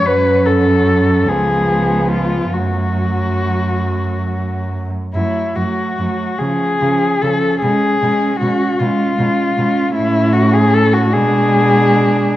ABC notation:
X:1
M:6/8
L:1/16
Q:3/8=48
K:F#m
V:1 name="Cello"
B2 A4 G4 ^E2 | F8- F2 z2 | E2 F4 G4 A2 | G4 F2 ^E6 |
E2 F G A F G6 |]
V:2 name="Cello"
C6 B,6 | A,8- A,3 z | A,2 A,2 A,2 C2 C2 C2 | C2 C2 C2 C2 C2 C2 |
C6 D6 |]
V:3 name="Cello" clef=bass
F,6 ^E,6 | F,8- F,3 z | F,2 F,2 F,2 ^E,2 E,2 E,2 | G,2 G,2 G,2 G,2 G,2 G,2 |
A,6 G,6 |]
V:4 name="Cello" clef=bass
F,,6 C,,6 | F,,8- F,,3 z | F,,2 F,,2 F,,2 C,2 C,2 C,2 | B,,2 B,,2 B,,2 B,,2 B,,2 B,,2 |
A,,6 B,,6 |]